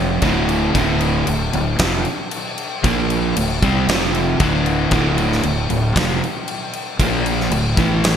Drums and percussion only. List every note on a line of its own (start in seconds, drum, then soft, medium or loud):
0.22 kick loud
0.22 crash medium
0.49 crash medium
0.75 kick loud
0.75 crash medium
1.01 crash medium
1.27 crash medium
1.53 crash medium
1.79 kick loud
1.79 snare loud
1.79 crash medium
2.05 crash medium
2.31 crash medium
2.58 crash medium
2.84 kick loud
2.84 crash medium
3.10 crash medium
3.37 crash medium
3.63 kick loud
3.63 crash medium
3.89 snare loud
3.89 crash medium
4.15 crash medium
4.40 kick loud
4.40 crash medium
4.66 crash medium
4.91 kick loud
4.91 crash medium
5.18 crash medium
5.33 snare soft
5.43 crash medium
5.70 crash medium
5.96 kick loud
5.96 snare loud
5.96 crash medium
6.24 crash medium
6.48 crash medium
6.73 crash medium
7.00 kick loud
7.00 crash medium
7.26 crash medium
7.41 snare soft
7.51 crash medium
7.77 kick loud
7.77 crash medium
8.04 snare loud
8.04 crash medium